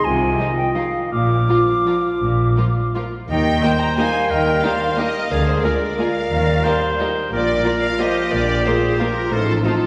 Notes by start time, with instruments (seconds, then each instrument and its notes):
Already playing: french horn section D#3, oboe D#5
0.04 double bass section C2, cello section C3, clarinet F4, french horn section F4, flute G#5
0.39 viola section F3, violin section D#4 G#4
0.57 flute G5
0.74 viola section F3, violin section D#4 G#4, flute F5
1.11 double bass section A#1, cello section A#2, french horn section F3 F4, clarinet F4, oboe F5, flute D6
1.49 viola section F3, violin section F4 A#4
1.86 viola section F3, violin section F4 A#4
2.21 double bass section A#1, cello section A#2
2.56 viola section F3, violin section F4 A#4
2.95 viola section F3, violin section F4 A#4
3.28 double bass section D#2, cello section D#3, french horn section G3 A#4, oboe D#4, flute D#5, violin section G5
3.62 viola section A#3 D#4, violin section G4 A#4, oboe C5
3.80 flute G5, violin section A#5
3.97 viola section A#3 D#4, violin section G4 A#4 G#5, flute F5
4.30 double bass section D#2, cello section D#3, oboe A#4, flute D#5, violin section G5
4.63 viola section A#3 D#4, violin section G4 A#4 F5, oboe C5, flute D5
4.97 viola section A#3 D#4, violin section G4 A#4 D#5, oboe A#4, flute A#4
5.28 double bass section D2, cello section D3, french horn section G#3 A#4, oboe G#4, flute D5, violin section F5
5.46 flute G#4, violin section C5
5.63 viola section A#3 F4, violin section G#4 A#4 D5, flute A#4, oboe A#4
5.98 viola section A#3 F4, violin section G#4 A#4 F5, flute D5
6.31 double bass section D#2, cello section D#3, french horn section G3, oboe A#4
6.64 viola section A#3 D#4, violin section G4 A#4, oboe C5
7.00 viola section A#3 D#4, violin section G4 A#4
7.31 double bass section A#1, cello section A#2, french horn section F3 F4, flute A#4, oboe A#4, violin section D5
7.64 viola section A#3 F4, violin section F4 A#4
7.82 flute D5, violin section F5
7.98 viola section A#3 F4, violin section F4 A#4 D#5, oboe G4, flute C5
8.32 double bass section A#1, cello section A#2, flute A#4, violin section D5
8.65 viola section A#3 F4, violin section F4 A#4 C5, flute G#4
8.99 viola section A#3 F4, flute F4, violin section F4 A#4
9.30 double bass section A1, cello section A2, french horn section F3 D#4, oboe F4, flute A4, violin section C5
9.47 flute F4, violin section A4
9.63 viola section C4 D#4, flute F4, violin section F4 A4